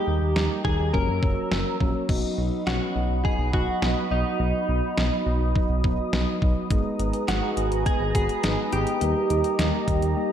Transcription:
Already playing: G4 D#5 A#5 D#6
0.07 D#2 G3 A#3 D#4
0.22 D#2
0.36 D#2 G3 A#3 D#4, snare
0.65 D#2 G3 A#3 D#4 G#4, kick
0.79 D#2
0.94 F#1 F#3 A#3 C#4 F#4 A#4 C#5 E6, kick
1.08 F#2
1.22 F#1 F#3 A#3 C#4, kick
1.51 F#1 F#3 A#3 C#4, snare
1.80 A#1 F#3 A#3 C#4, kick
2.09 B1 F#3 B3 D#4 F#4 D#5 B5 D#6, kick, crash
2.38 B1 F#3 B3 D#4
2.67 B1 F#3 B3 C#4 F#4, snare
2.96 B1 F#3 B3 D#4
3.10 B1
3.24 F#3 B3 D#4 G#4, kick
3.39 B1
3.53 B1 F#3 B3 D#4 F#4, kick
3.82 B1 F#3 B3 D#4, snare
4.11 B1 F#3 B3 D#4
4.40 B1 F#3 B3 D#4
4.69 B1 F#3 B3 D#4
4.97 B1 F#3 B3 D#4, snare
5.26 B1 F#3 B3 D#4
5.41 B1
5.55 F#3 B3 D#4, kick
5.70 B1
5.84 B1 F#3 B3 D#4, kick
6.13 B1 F#3 B3 D#4, snare
6.42 B1 F#3 B3 D#4, kick
6.70 G#1 G#3 B3 D#4 G#4 B4 A#5, kick, closed hi-hat
6.99 G#1 G#3 B3 D#4, closed hi-hat
7.13 closed hi-hat
7.28 G#1 G#3 B3 D#4 F#4, snare, closed hi-hat
7.57 G#1 G#3 B3 D#4, closed hi-hat
7.71 G#1, closed hi-hat
7.86 G#3 B3 D#4 G#4, kick, closed hi-hat
8.00 G#1
8.15 G#1 G#3 B3 F#4 G#4, kick, closed hi-hat
8.29 closed hi-hat
8.44 G#1 G#3 B3 D#4, snare, closed hi-hat
8.72 G#1 G#3 B3 D#4 G4, closed hi-hat
8.87 closed hi-hat
9.01 D#2 G3 A#3 D#4 G4 D#5 A#5, closed hi-hat
9.30 D#2 G3 A#3 D#4, closed hi-hat
9.44 closed hi-hat
9.59 D#2 G3 A#3 D#4, snare, closed hi-hat
9.88 D#2 G3 A#3 D#4, kick, closed hi-hat
10.02 D#2, closed hi-hat
10.17 G3 A#3 D#4

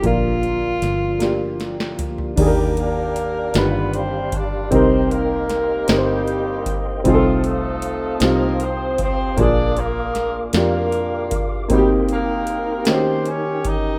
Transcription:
Already playing: F4
0.02 A#1 A#2 D3 F3 A#3 D4 F4 A#4, kick, closed hi-hat
0.06 F4
0.43 closed hi-hat
0.82 G1, snare, closed hi-hat
1.19 A#3 D4 F4 G4, snare, closed hi-hat
1.60 snare, closed hi-hat
1.80 snare
1.99 D2, closed hi-hat, floor tom
2.18 floor tom
2.36 D#2 D#3 G3 A#3 D4 G4 D5 G5 A#5, kick, closed hi-hat, crash
2.41 G#4
2.47 A#4
2.77 A#3 D4 G4 A#4, closed hi-hat
3.16 closed hi-hat
3.54 G1 G2 D#3 B3 D4 F4 G4 B4 D5 F5 B5, snare, closed hi-hat
3.93 C4 C5, closed hi-hat
4.32 D4 D5, kick, closed hi-hat
4.71 C2 C3 C4 D#4 G4 A#4 C5 D#5 G5 C6, kick, closed hi-hat
5.11 A#3 D#4 G4 A#4, closed hi-hat
5.49 snare, closed hi-hat
5.88 G1 G3 A#3 C4 D#4 G4 A#4, snare, closed hi-hat
5.98 C5
6.28 closed hi-hat
6.66 kick, closed hi-hat
7.04 C2 C3 F3 A3 C4 D#4 F4 G#4 C5 F5 A5 D#6, kick, closed hi-hat
7.14 A4
7.44 A3 D#4 F4 A4, closed hi-hat
7.82 closed hi-hat
8.20 C2 C4 D#4 F4, snare, closed hi-hat
8.24 A#3 G4 A#4
8.60 C4 C5, closed hi-hat
8.98 C4 C5, kick, closed hi-hat
9.37 A#1 A#2 A#3 D4 F4 G#4 A#4 D5 D6, kick, closed hi-hat
9.77 A#3 D4 F4 A#4, closed hi-hat
10.15 snare, closed hi-hat
10.53 F2 A#3 D4 F4 G4 A#4, snare, closed hi-hat
10.92 closed hi-hat
11.31 kick, closed hi-hat
11.68 C3 G3 A#3 C4 D#4 G4 G5 C6, kick, closed hi-hat
11.73 D#4 F#4
11.79 G4
12.09 A#3 D#4 G4 A#4, closed hi-hat
12.47 closed hi-hat
12.85 D#3 A#3 C4 C#4 D#4 F#4 G4 A#4 C5 G5, snare, closed hi-hat
12.96 G4
13.26 C#4 C#5, closed hi-hat
13.65 D#4 D#5, kick, closed hi-hat

